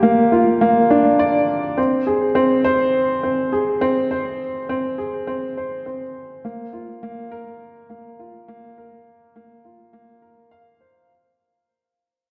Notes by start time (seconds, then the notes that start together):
Already playing: A#3 F4 G4
0.03 A#3
0.32 F4
0.61 A#3
0.91 D4
1.19 D5
1.78 C4
2.07 G#4
2.35 C4
2.64 C5
3.23 C4
3.53 G#4
3.81 C4
4.11 C5
4.69 C4
4.98 G#4
5.27 C4
5.57 C5
5.86 C4
6.45 A#3
6.73 F4
7.03 A#3
7.32 A#4
7.90 A#3
8.19 F4
8.48 A#3
8.78 A#4
9.36 A#3
9.65 F4
9.93 A#3
10.22 A#4
10.51 F5
10.81 C5